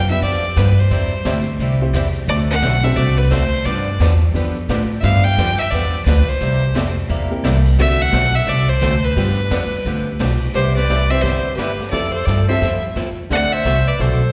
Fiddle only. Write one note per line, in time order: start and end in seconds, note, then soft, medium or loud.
0.10 0.22 E5 loud
0.23 0.59 D5 loud
0.58 0.81 B4 medium
0.80 1.48 C5 medium
2.29 2.39 D5 loud
2.50 2.86 F#5 loud
2.84 2.98 E5 loud
2.97 3.19 D5 loud
3.18 3.33 B4 medium
3.31 3.67 C5 loud
3.65 4.00 D5 medium
5.00 5.05 E5 medium
5.00 5.26 F5 loud
5.24 5.60 G5 loud
5.59 5.73 E5 loud
5.71 6.05 D5 medium
6.06 6.30 B4 medium
6.29 6.97 C5 medium
7.80 8.03 E5 loud
8.02 8.37 F#5 loud
8.36 8.50 E5 loud
8.49 8.70 D5 loud
8.69 9.06 C5 loud
9.04 10.20 B4 medium
10.54 10.75 C5 medium
10.77 11.12 D5 loud
11.11 11.24 E5 loud
11.22 11.56 C5 medium
11.56 11.89 B4 medium
11.90 12.12 D5 medium
12.13 12.27 C5 medium
12.26 12.48 D5 medium
12.49 12.81 E5 medium
13.32 13.54 F#5 loud
13.53 13.90 E5 loud
13.88 14.03 D5 medium
14.01 14.32 C5 medium